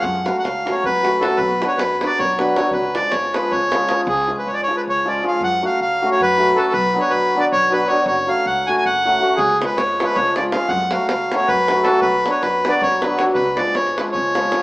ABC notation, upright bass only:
X:1
M:7/8
L:1/8
Q:1/4=158
K:none
V:1 name="Upright bass" clef=bass
^F,,2 ^C,,2 F,,3 | B,,,2 ^F,,2 B,,,3 | ^C,,2 ^G,,,2 C,,3 | ^C,,2 ^G,,,2 C,,3 |
^F,,2 ^C,,2 F,,3 | B,,,2 ^F,,2 B,,,3 | ^F,,,2 ^C,,2 F,,,3 | ^C,,2 ^G,,,2 C,,3 |
^F,,2 ^C,,2 F,,3 | B,,,2 ^F,,2 B,,,3 | ^C,,2 ^G,,,2 C,,3 |]